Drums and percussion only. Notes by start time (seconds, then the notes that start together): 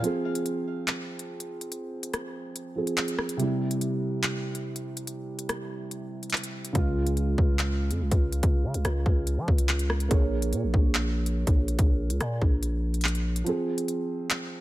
0.04 closed hi-hat
0.35 closed hi-hat
0.46 closed hi-hat
0.88 clap, closed hi-hat
1.19 closed hi-hat
1.40 closed hi-hat
1.61 closed hi-hat
1.72 closed hi-hat
2.03 closed hi-hat
2.14 cross-stick, closed hi-hat
2.56 closed hi-hat
2.87 closed hi-hat
2.98 clap, closed hi-hat
3.08 closed hi-hat
3.19 cross-stick
3.29 closed hi-hat
3.40 closed hi-hat
3.71 closed hi-hat
3.81 closed hi-hat
4.23 clap, closed hi-hat
4.55 closed hi-hat
4.76 closed hi-hat
4.97 closed hi-hat
5.07 closed hi-hat
5.39 closed hi-hat
5.49 cross-stick, closed hi-hat
5.91 closed hi-hat
6.23 closed hi-hat
6.30 clap, closed hi-hat
6.37 closed hi-hat
6.44 closed hi-hat
6.65 closed hi-hat
6.75 kick, closed hi-hat
7.07 closed hi-hat
7.17 closed hi-hat
7.38 kick
7.59 clap, closed hi-hat
7.91 closed hi-hat
8.11 kick, closed hi-hat
8.32 closed hi-hat
8.43 kick, closed hi-hat
8.74 closed hi-hat
8.85 cross-stick, closed hi-hat
9.06 kick
9.27 closed hi-hat
9.48 kick
9.58 closed hi-hat
9.69 clap, closed hi-hat
9.79 closed hi-hat
9.90 cross-stick
10.00 closed hi-hat
10.11 kick, closed hi-hat
10.42 closed hi-hat
10.53 closed hi-hat
10.74 kick
10.95 clap, closed hi-hat
11.26 closed hi-hat
11.47 kick, closed hi-hat
11.68 closed hi-hat
11.79 kick, closed hi-hat
12.10 closed hi-hat
12.20 cross-stick, closed hi-hat
12.42 kick
12.63 closed hi-hat
12.94 closed hi-hat
13.01 clap, closed hi-hat
13.08 closed hi-hat
13.15 closed hi-hat
13.36 closed hi-hat
13.46 closed hi-hat
13.78 closed hi-hat
13.88 closed hi-hat
14.30 clap, closed hi-hat